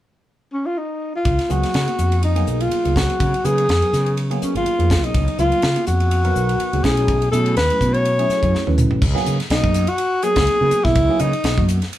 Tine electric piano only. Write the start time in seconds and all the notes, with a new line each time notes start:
1.49 F#3 A#3 B3 D#4 G#4
1.74 D#4 G#4
1.86 A#3 B3 D#4 F#4 G#4
2.35 F#3 A#3 B3 D#4 G#4
2.84 F#3 A#3 B3 D#4 G#4
3.44 F#3 A#3 B3 D#4 B4
3.68 D#4 G#4
3.82 F#3 B3 D#4 A#4 B4
4.30 F#3 A#3 B3 D#4 G#4
4.78 F#3 A#3 B3 D#4 G#4
5.38 F#3 A#3 B3 D#4 F4
5.63 D#4 G#4
5.75 A#3 B3 D#4 F#4 G#4
6.24 F#3 B3 D#4 A#4 B4
6.73 F#3 A#3 B3 D#4 G#4
6.84 F#3 A3 C#4 E4 G#4
7.32 F#3 A3 C#4 E4 G#4
7.57 E4 F#4
7.71 F#3 A3 C#4 E4 G#4
8.18 F#3 A3 C#4 E4 G#4
8.66 F#3 A3 C#4 E4 B4
9.15 F#3 A#3 B3 D#4 G#4
9.39 D#4 G#4
9.63 F#3 A#3 B3 D#4 G#4
10.23 F#3 A#3 B3 D#4 G#4
10.61 F#3 A#3 B3 D#4 G#4
11.09 F#3 A#3 B3 D#4 G#4
11.34 D#4
11.57 F#3 A#3 B3 D#4 F#4
11.82 D#4 G#4